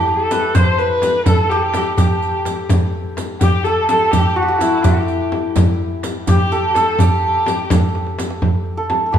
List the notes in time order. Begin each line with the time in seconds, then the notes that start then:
Already playing: E4 G4 A4
0.08 A4, tombak ka
0.31 B4, riq, tombak tek, frame drum
0.55 C5, riq, frame drum, tombak dum
0.78 B4, riq
1.02 riq, tombak tek, frame drum
1.26 A4, riq, frame drum, tombak dum
1.49 G4, riq, tombak ka
1.57 A4
1.62 G4
1.74 riq, tombak tek, frame drum
1.97 G4, riq, tombak dum, frame drum
2.21 riq, tombak ka
2.45 riq, tombak tek, frame drum
2.69 riq, frame drum, tombak dum
2.94 tombak ka
3.17 riq, tombak tek, frame drum
3.41 G4, riq, frame drum, tombak dum
3.64 A4, riq
3.88 A4, riq, frame drum
4.11 G4, riq, frame drum, tombak dum
4.36 F#4, tombak ka
4.42 F#4 G4
4.48 F#4
4.58 E4, riq, tombak tek, frame drum
4.83 G4, riq, tombak dum, frame drum
5.08 riq
5.32 tombak tek, frame drum
5.56 riq, tombak dum, frame drum
5.80 tombak ka
6.03 riq, tombak tek, frame drum
6.27 G4, riq, tombak dum, frame drum
6.52 A4, riq
6.75 A4, riq, tombak tek, frame drum
6.95 A4, frame drum
6.99 G4, riq, tombak dum
7.24 tombak ka
7.46 riq, tombak tek, frame drum
7.70 riq, frame drum, tombak dum
7.95 tombak tek
8.07 tombak ka
8.19 riq, tombak tek, frame drum
8.30 tombak ka
8.42 frame drum, tombak dum
8.66 tombak ka
8.77 A4
8.90 A4, tombak tek, frame drum
9.06 A4
9.12 G4, tombak dum, frame drum